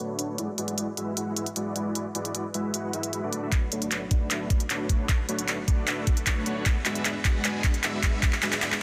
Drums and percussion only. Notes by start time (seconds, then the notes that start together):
0.19 closed hi-hat
0.38 closed hi-hat
0.58 closed hi-hat
0.68 closed hi-hat
0.78 closed hi-hat
0.97 closed hi-hat
1.17 closed hi-hat
1.37 closed hi-hat
1.46 closed hi-hat
1.56 closed hi-hat
1.76 closed hi-hat
1.95 closed hi-hat
2.15 closed hi-hat
2.25 closed hi-hat
2.35 closed hi-hat
2.54 closed hi-hat
2.74 closed hi-hat
2.93 closed hi-hat
3.03 closed hi-hat
3.13 closed hi-hat
3.33 closed hi-hat
3.52 kick, clap, closed hi-hat
3.72 closed hi-hat
3.82 closed hi-hat
3.91 clap, closed hi-hat
4.11 kick, closed hi-hat
4.31 clap, closed hi-hat
4.50 kick, closed hi-hat
4.60 closed hi-hat
4.70 clap, closed hi-hat
4.89 kick, closed hi-hat
5.09 kick, clap, closed hi-hat
5.29 closed hi-hat
5.39 closed hi-hat
5.48 clap, closed hi-hat
5.68 kick, closed hi-hat
5.87 clap, closed hi-hat
6.07 kick, closed hi-hat
6.17 closed hi-hat
6.27 kick, clap, closed hi-hat
6.46 closed hi-hat
6.66 kick, clap, closed hi-hat
6.85 clap, closed hi-hat
6.95 closed hi-hat
7.05 clap, closed hi-hat
7.25 kick, clap, closed hi-hat
7.45 clap, closed hi-hat
7.64 kick, clap, closed hi-hat
7.74 closed hi-hat
7.83 clap, closed hi-hat
8.03 kick, clap, closed hi-hat
8.23 kick, clap, closed hi-hat
8.33 clap
8.42 clap, closed hi-hat
8.52 clap, closed hi-hat
8.62 clap, closed hi-hat
8.72 clap